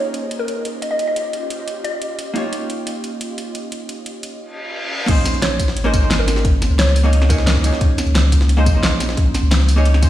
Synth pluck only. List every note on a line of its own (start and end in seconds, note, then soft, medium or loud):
0.00 0.31 C#5 medium
0.39 0.60 A#4 medium
0.82 0.89 D#5 medium
0.91 1.06 D#5 medium
1.07 1.28 D#5 medium
1.84 2.32 D#5 medium
5.42 5.76 C#5 medium
5.85 6.06 A#4 medium
6.19 6.40 A#4 loud
6.79 6.99 C#5 medium
7.30 7.78 A#4 medium